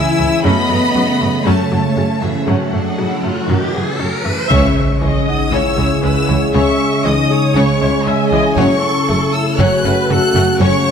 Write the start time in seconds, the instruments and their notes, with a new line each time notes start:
Already playing: trombone section C#3 E3, ambient pad C#3 E3 C#4 C#5, french horn section E4, cello section E4, violin section G#5 E6
0.18 double bass section C#2, viola section C#3 G#3, synth arpeggio sound E3
0.44 double bass section F#2, trombone section C#3 A3, ambient pad C#3 C#4 A4 C#5, synth arpeggio sound F#3, viola section A3 C#4, cello section B3, french horn section B3, violin section D#5 B5, riser
0.69 double bass section F#2, viola section F#3 A3, synth arpeggio sound A3
0.95 double bass section F#2, viola section C#3 F#3, synth arpeggio sound F#4
1.21 double bass section F#2, viola section F#3 A3, synth arpeggio sound A3
1.46 double bass section F#2, synth arpeggio sound F#3, cello section A3, french horn section A3, viola section A3 C#4, violin section C#5 A5
1.71 double bass section F#2, viola section F#3 A3, synth arpeggio sound F#4, grand piano A5
1.97 double bass section F#2, viola section C#3 F#3, synth arpeggio sound C#4
2.22 double bass section F#2, french horn section E3, cello section E3, viola section F#3 A3, synth arpeggio sound A3, violin section G#4 E5
2.47 double bass section F#2, synth arpeggio sound F#3, french horn section F#3, cello section F#3, viola section A3 C#4, violin section A4 F#5
2.73 double bass section F#2, viola section F#3 A3, synth arpeggio sound A3
2.98 double bass section F#2, viola section C#3, synth arpeggio sound F#4
3.23 double bass section F#2, viola section F#3, synth arpeggio sound A3
3.49 double bass section F#2, viola section D#3, synth arpeggio sound F#3
3.74 double bass section F#2, viola section E3, synth arpeggio sound F#4
4.00 double bass section F#2, viola section F#3, synth arpeggio sound C#4
4.25 double bass section F#2, viola section E3, synth arpeggio sound A3
4.50 double bass section C#2, cello section C#2, synth arpeggio sound C#3, trombone section C#3 G#3, ambient pad C#3 C#4 G#4 C#5, violin section C#4 C#5 C#6, french horn section C#4, viola section E5, impact
5.01 double bass section C#2, cello section C#2, synth arpeggio sound E3, violin section G#3 G#4, viola section D#5
5.27 french horn section D#4, grand piano F#5, violin section D#6
5.52 double bass section C#2, cello section C#2, synth arpeggio sound C#3, violin section C#4 C#5 E6, french horn section E4, viola section C#5
5.77 double bass section C#2, cello section C#2, synth arpeggio sound G#3, violin section G#3 E4, grand piano G#4
6.03 double bass section C#2, cello section C#2, violin section G#3 G#4 E6, synth arpeggio sound C#4, french horn section E4, viola section B4
6.29 double bass section C#2, cello section C#2, synth arpeggio sound E3, violin section G#3 E4, viola section C#5
6.54 double bass section C#2, cello section C#2, synth arpeggio sound C#3, violin section C#4 C#5 C#6, french horn section C#4, viola section E5
7.05 double bass section C#2, cello section C#2, synth arpeggio sound E3, violin section G#3 G#4 D#6, french horn section D#4, viola section D#5
7.30 grand piano G#4, viola section C#5
7.56 double bass section C#2, cello section C#2, synth arpeggio sound C#3, french horn section C#4, violin section C#4 C#5 C#6
7.80 cello section C#2, double bass section C#2, synth arpeggio sound G#3, violin section G#3 E4, grand piano C#5
8.07 double bass section C#2, cello section C#2, french horn section G#3, violin section G#3 G#4 G#5, synth arpeggio sound C#4, viola section E5
8.32 double bass section C#2, cello section C#2, synth arpeggio sound E3, violin section G#3 E4, grand piano E4 E5, viola section D#5
8.57 double bass section F#1, cello section F#2, ambient pad C#3 C#4 A4 C#5, trombone section C#3 A3, synth arpeggio sound F#3, violin section C#4 C#5 C#6, french horn section C#4, viola section C#5
8.82 viola section A4
9.08 double bass section F#1, cello section F#2, synth arpeggio sound A3, violin section A3 A4
9.34 french horn section E4, violin section E6
9.59 double bass section F#1, cello section F#2, synth arpeggio sound F#3, violin section C#4 C#5 F#6, french horn section F#4, viola section C#5
9.84 double bass section F#1, cello section F#2, violin section A3 F#4, synth arpeggio sound C#4, viola section B4
10.10 double bass section F#1, cello section F#2, violin section A3 A4 F#6, synth arpeggio sound F#4, french horn section F#4, viola section A4
10.35 double bass section F#1, cello section F#2, violin section A3 F#4, synth arpeggio sound A3, grand piano F#5
10.60 double bass section F#1, cello section F#2, synth arpeggio sound F#3, violin section C#4 C#5 C#6, french horn section C#4, viola section C#5